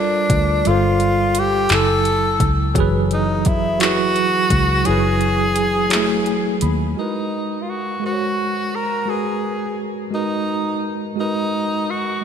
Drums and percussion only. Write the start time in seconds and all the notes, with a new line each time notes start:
0.30 kick, closed hi-hat
0.65 closed hi-hat
1.00 closed hi-hat
1.35 closed hi-hat
1.69 clap, closed hi-hat
2.05 closed hi-hat
2.40 kick, closed hi-hat
2.75 kick, closed hi-hat
3.11 closed hi-hat
3.45 kick, closed hi-hat
3.80 clap, closed hi-hat
4.16 closed hi-hat
4.50 kick, closed hi-hat
4.85 closed hi-hat
5.21 closed hi-hat
5.56 closed hi-hat
5.90 clap, closed hi-hat
6.26 closed hi-hat
6.61 closed hi-hat